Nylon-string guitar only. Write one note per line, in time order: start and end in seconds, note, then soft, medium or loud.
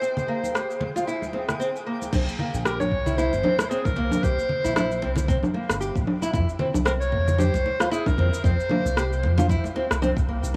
0.02 0.10 C4 medium
0.28 0.54 A#3 medium
0.54 0.69 G4 medium
0.96 1.07 F4 medium
1.07 1.21 E4 medium
1.34 1.42 C4 medium
1.60 1.68 C4 medium
1.86 2.12 A#3 medium
2.13 2.21 C4 medium
2.39 2.64 A#3 medium
2.66 2.80 G4 medium
3.07 3.17 E4 medium
3.18 3.32 E4 loud
3.44 3.53 C4 medium
3.71 3.79 C4 loud
3.97 4.22 A#3 medium
4.23 4.37 G4 medium
4.64 4.75 E4 medium
4.76 4.90 E4 loud
5.02 5.11 C4 medium
5.28 5.37 C4 loud
5.54 5.80 A#3 medium
5.81 5.95 G4 medium
6.22 6.32 E4 medium
6.33 6.48 E4 medium
6.60 6.68 C4 medium
6.86 6.94 C4 loud
7.12 7.38 A#3 medium
7.38 7.53 G4 medium
7.80 7.91 F4 medium
7.91 8.06 E4 medium
8.18 8.26 C4 medium
8.44 8.53 C4 medium
8.71 8.96 A#3 medium
8.97 9.11 G4 medium
9.38 9.49 F4 medium
9.50 9.64 E4 loud
9.76 9.84 C4 medium
10.02 10.11 C4 loud
10.29 10.54 A#3 medium